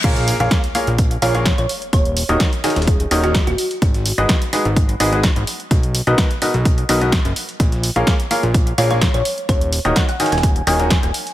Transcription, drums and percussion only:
0.04 kick, closed hi-hat, crash
0.16 snare, closed hi-hat
0.28 closed hi-hat, open hi-hat
0.40 closed hi-hat
0.51 kick, snare, closed hi-hat
0.64 closed hi-hat
0.75 closed hi-hat, open hi-hat
0.87 closed hi-hat
0.98 kick, closed hi-hat
1.11 closed hi-hat
1.22 open hi-hat
1.35 snare, closed hi-hat
1.45 kick, snare, closed hi-hat
1.58 closed hi-hat
1.69 closed hi-hat, open hi-hat
1.82 closed hi-hat
1.93 kick, closed hi-hat
2.05 closed hi-hat
2.17 closed hi-hat, open hi-hat
2.29 closed hi-hat
2.40 kick, snare, closed hi-hat
2.53 snare, closed hi-hat
2.64 snare, closed hi-hat, open hi-hat
2.70 snare, closed hi-hat
2.76 snare, closed hi-hat
2.82 snare, closed hi-hat
2.87 kick, closed hi-hat
3.00 closed hi-hat
3.11 closed hi-hat, open hi-hat
3.24 snare, closed hi-hat
3.34 kick, snare, closed hi-hat
3.47 snare, closed hi-hat
3.58 closed hi-hat, open hi-hat
3.71 closed hi-hat
3.82 kick, closed hi-hat
3.94 snare, closed hi-hat
4.06 closed hi-hat, open hi-hat
4.18 closed hi-hat
4.29 kick, snare, closed hi-hat
4.42 closed hi-hat
4.53 closed hi-hat, open hi-hat
4.65 closed hi-hat
4.76 kick, closed hi-hat
4.89 closed hi-hat
5.00 open hi-hat
5.13 snare, closed hi-hat
5.23 kick, snare, closed hi-hat
5.36 closed hi-hat
5.47 closed hi-hat, open hi-hat
5.60 closed hi-hat
5.71 kick, closed hi-hat
5.83 closed hi-hat
5.95 closed hi-hat, open hi-hat
6.07 closed hi-hat
6.18 kick, snare, closed hi-hat
6.31 snare, closed hi-hat
6.42 closed hi-hat, open hi-hat
6.54 closed hi-hat
6.65 kick, closed hi-hat
6.78 closed hi-hat
6.89 closed hi-hat, open hi-hat
7.01 snare, closed hi-hat
7.12 kick, snare, closed hi-hat
7.25 snare, closed hi-hat
7.36 closed hi-hat, open hi-hat
7.49 closed hi-hat
7.60 kick, closed hi-hat
7.72 snare, closed hi-hat
7.83 closed hi-hat, open hi-hat
7.96 closed hi-hat
8.07 kick, snare, closed hi-hat
8.20 closed hi-hat
8.31 closed hi-hat, open hi-hat
8.43 closed hi-hat
8.54 kick, closed hi-hat
8.67 closed hi-hat
8.78 open hi-hat
8.90 snare, closed hi-hat
9.01 kick, snare, closed hi-hat
9.14 closed hi-hat
9.25 closed hi-hat, open hi-hat
9.38 closed hi-hat
9.49 kick, closed hi-hat
9.61 closed hi-hat
9.73 closed hi-hat, open hi-hat
9.85 closed hi-hat
9.96 kick, snare, closed hi-hat
10.09 snare, closed hi-hat
10.20 snare, closed hi-hat, open hi-hat
10.26 snare, closed hi-hat
10.32 snare, closed hi-hat
10.38 snare, closed hi-hat
10.43 kick, closed hi-hat
10.56 closed hi-hat
10.67 closed hi-hat, open hi-hat
10.79 snare, closed hi-hat
10.90 kick, snare, closed hi-hat
11.03 snare, closed hi-hat
11.14 closed hi-hat, open hi-hat
11.27 closed hi-hat

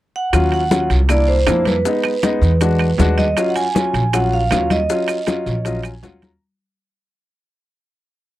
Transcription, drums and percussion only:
0.33 high bongo, high conga, high timbale, long guiro, claves, maracas
0.52 high conga, high timbale
0.71 high bongo, high conga, low timbale, short guiro, maracas
0.90 high bongo, high timbale, short guiro, maracas
1.09 high bongo, high conga, high timbale, long guiro, claves, maracas
1.28 high bongo, high conga
1.47 high bongo, low bongo, high conga, high timbale, low timbale, short guiro, claves, maracas
1.65 high bongo, high conga, high timbale, short guiro, maracas
1.85 high bongo, high conga, long guiro, maracas
2.04 high bongo, high conga, high timbale, claves
2.23 high bongo, high conga, high timbale, low timbale, short guiro, maracas
2.42 high bongo, high conga, short guiro, maracas
2.61 high bongo, high conga, high timbale, long guiro, maracas
2.79 high conga, high timbale, claves
2.98 high bongo, low bongo, high conga, low timbale, short guiro, maracas
3.18 high bongo, high conga, high timbale, short guiro, maracas
3.37 high bongo, high conga, high timbale, long guiro, claves, maracas
3.56 high conga, high timbale, maracas
3.75 high bongo, high conga, low timbale, short guiro, maracas
3.94 high bongo, high timbale, short guiro, maracas
4.13 high bongo, high conga, high timbale, long guiro, claves, maracas
4.33 high bongo, high conga
4.51 high bongo, low bongo, high conga, high timbale, low timbale, short guiro, claves, maracas
4.70 high bongo, high conga, high timbale, short guiro, maracas
4.90 high bongo, high conga, long guiro, maracas
5.08 high bongo, high conga, high timbale, claves, maracas
5.27 high bongo, high conga, high timbale, low timbale, short guiro, maracas
5.46 high bongo, high conga, short guiro, maracas
5.65 high bongo, high conga, high timbale, long guiro, maracas
5.83 high conga, high timbale, claves, maracas
6.03 high bongo, low bongo, high conga, low timbale, short guiro, maracas
6.22 high bongo, high conga, high timbale, short guiro, maracas

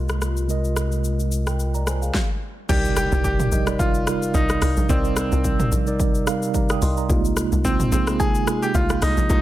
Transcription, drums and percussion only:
0.09 cross-stick, shaker
0.21 cross-stick, shaker
0.37 shaker
0.49 shaker
0.64 shaker
0.76 cross-stick, shaker
0.92 shaker
1.04 shaker
1.20 shaker
1.32 shaker
1.47 cross-stick, shaker
1.59 shaker
1.74 shaker
1.87 cross-stick, shaker
2.02 shaker
2.14 kick, snare
2.69 kick, crash, shaker
2.85 shaker
2.97 cross-stick, shaker
3.12 shaker
3.24 kick, shaker
3.40 mid tom, shaker
3.52 shaker
3.67 cross-stick, shaker
3.79 kick, shaker
3.94 shaker
4.07 cross-stick, shaker
4.22 shaker
4.34 kick, shaker
4.49 cross-stick, shaker
4.62 cross-stick, open hi-hat, shaker
4.77 shaker
4.89 kick, shaker
5.05 shaker
5.17 cross-stick, shaker
5.32 shaker
5.44 kick, shaker
5.60 mid tom, shaker
5.72 shaker
5.87 shaker
6.00 kick, shaker
6.15 shaker
6.27 cross-stick, shaker
6.42 shaker
6.54 kick, shaker
6.69 cross-stick, shaker
6.82 open hi-hat, shaker
6.97 shaker
7.10 kick, shaker
7.25 shaker
7.37 cross-stick, shaker
7.52 shaker
7.65 kick, shaker
7.80 mid tom, shaker
7.92 shaker
8.07 cross-stick, shaker
8.20 kick, shaker
8.35 shaker
8.47 cross-stick, shaker
8.63 shaker
8.74 kick, shaker
8.89 cross-stick, shaker
9.02 cross-stick, open hi-hat, shaker
9.17 shaker
9.30 kick, shaker

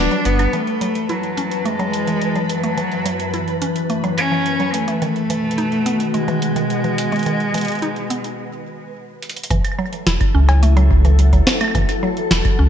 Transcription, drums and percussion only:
0.11 closed hi-hat
0.25 closed hi-hat
0.39 closed hi-hat, high woodblock
0.53 closed hi-hat
0.67 closed hi-hat
0.81 closed hi-hat
0.95 closed hi-hat
1.09 closed hi-hat
1.23 closed hi-hat
1.37 closed hi-hat
1.51 closed hi-hat
1.65 closed hi-hat
1.79 closed hi-hat
1.93 closed hi-hat
2.07 closed hi-hat
2.22 closed hi-hat
2.35 closed hi-hat
2.49 closed hi-hat
2.63 closed hi-hat
2.78 closed hi-hat
2.92 closed hi-hat
3.06 closed hi-hat
3.20 closed hi-hat
3.34 closed hi-hat
3.48 closed hi-hat
3.62 closed hi-hat
3.76 closed hi-hat
3.90 closed hi-hat
4.04 closed hi-hat
4.18 closed hi-hat
4.46 closed hi-hat
4.60 closed hi-hat
4.74 closed hi-hat
4.88 closed hi-hat
5.02 closed hi-hat
5.16 closed hi-hat
5.30 closed hi-hat
5.51 closed hi-hat
5.58 closed hi-hat
5.72 closed hi-hat
5.86 closed hi-hat
6.00 closed hi-hat
6.14 closed hi-hat
6.28 closed hi-hat
6.42 closed hi-hat
6.56 closed hi-hat
6.70 closed hi-hat
6.84 closed hi-hat
6.98 closed hi-hat
7.12 closed hi-hat
7.16 closed hi-hat
7.19 closed hi-hat
7.23 closed hi-hat
7.26 closed hi-hat
7.40 closed hi-hat
7.54 closed hi-hat
7.58 closed hi-hat
7.61 closed hi-hat
7.65 closed hi-hat
7.68 closed hi-hat
7.72 closed hi-hat
7.75 closed hi-hat
7.79 closed hi-hat
7.82 closed hi-hat
7.96 closed hi-hat
8.10 closed hi-hat
8.24 closed hi-hat
9.22 closed hi-hat
9.29 closed hi-hat
9.36 closed hi-hat
9.43 closed hi-hat
9.50 kick, closed hi-hat
9.65 closed hi-hat, high woodblock
9.72 high woodblock
9.79 high woodblock
9.86 high woodblock
9.93 closed hi-hat
10.07 snare, closed hi-hat
10.21 kick, closed hi-hat, high woodblock
10.49 closed hi-hat, cowbell
10.63 closed hi-hat
10.77 closed hi-hat
10.91 kick
11.05 closed hi-hat
11.19 closed hi-hat
11.33 kick, closed hi-hat
11.47 snare
11.61 closed hi-hat, high woodblock
11.64 high woodblock
11.68 high woodblock
11.71 kick, closed hi-hat, high woodblock
11.75 high woodblock
11.78 high woodblock
11.82 high woodblock
11.85 closed hi-hat, high woodblock
11.89 high woodblock
12.17 closed hi-hat
12.31 snare, closed hi-hat
12.45 kick, closed hi-hat, high woodblock

